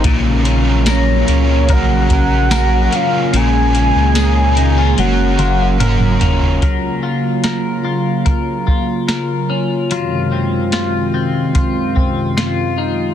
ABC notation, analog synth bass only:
X:1
M:4/4
L:1/16
Q:1/4=73
K:Gblyd
V:1 name="Analog synth bass" clef=bass
B,,,6 D,,2 B,,,6 z2 | B,,,3 D,,4- D,, G,,,2 G,,,4 F,,,2 | z16 | z16 |]